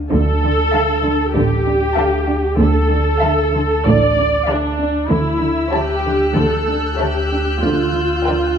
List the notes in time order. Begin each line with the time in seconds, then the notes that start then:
0.12 D2 D3 A4
0.44 D3
0.74 D3 E5 F5 A5
1.06 D3
1.36 A1 A2 D3 G4
1.67 D4
1.97 D3 E5 F5 A5
2.30 D4
2.60 D2 D3 A4
2.91 D3
3.22 D3 E5 F5 A5
3.54 D3
3.86 A1 A2 D3 D5
4.18 D4
4.48 D3 D4 E5 F5 A5
4.80 D4
5.10 D2 D3 E4 E6
5.42 D3
5.72 D3 G4 C#5 E5 A5 F#6
6.06 D3
6.36 D2 D3 A4 G6
6.69 D4
6.99 D3 G4 C#5 E5 A5
7.32 D4
7.63 D2 D3 F4
7.95 D3
8.27 D3 A#4 D5 G5